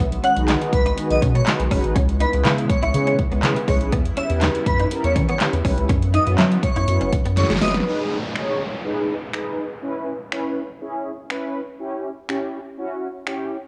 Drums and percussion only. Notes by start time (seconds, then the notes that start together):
0.12 closed hi-hat
0.24 closed hi-hat
0.37 closed hi-hat
0.48 snare, clap, closed hi-hat
0.62 closed hi-hat
0.73 kick, closed hi-hat
0.86 closed hi-hat
0.98 closed hi-hat
1.10 closed hi-hat
1.22 kick, closed hi-hat
1.35 closed hi-hat
1.47 snare, clap, closed hi-hat
1.60 closed hi-hat
1.71 kick, open hi-hat
1.84 closed hi-hat
1.96 kick, closed hi-hat
2.09 closed hi-hat
2.20 closed hi-hat
2.33 closed hi-hat
2.45 snare, clap, closed hi-hat
2.58 closed hi-hat
2.69 kick, closed hi-hat
2.83 closed hi-hat
2.94 closed hi-hat
3.07 closed hi-hat
3.19 kick, closed hi-hat
3.32 closed hi-hat
3.43 snare, clap, closed hi-hat
3.56 closed hi-hat
3.68 kick, open hi-hat
3.81 closed hi-hat
3.93 kick, closed hi-hat
4.06 closed hi-hat
4.17 closed hi-hat
4.30 closed hi-hat
4.42 snare, clap, closed hi-hat
4.55 closed hi-hat
4.66 kick, closed hi-hat
4.79 closed hi-hat
4.91 closed hi-hat
5.04 closed hi-hat
5.16 kick, closed hi-hat
5.29 closed hi-hat
5.40 snare, clap, closed hi-hat
5.53 closed hi-hat
5.65 kick, open hi-hat
5.78 closed hi-hat
5.89 kick, closed hi-hat
6.02 closed hi-hat
6.14 closed hi-hat
6.27 closed hi-hat
6.38 snare, clap, closed hi-hat
6.52 closed hi-hat
6.63 kick, closed hi-hat
6.76 closed hi-hat
6.88 closed hi-hat
7.01 closed hi-hat
7.12 kick, closed hi-hat
7.25 closed hi-hat
7.37 snare, closed hi-hat
7.43 snare
7.50 snare, closed hi-hat
7.56 snare
7.61 snare, open hi-hat
7.68 snare
7.74 snare, closed hi-hat
7.80 snare
8.35 finger snap
9.33 finger snap
10.32 finger snap
11.30 finger snap
12.29 finger snap
13.27 finger snap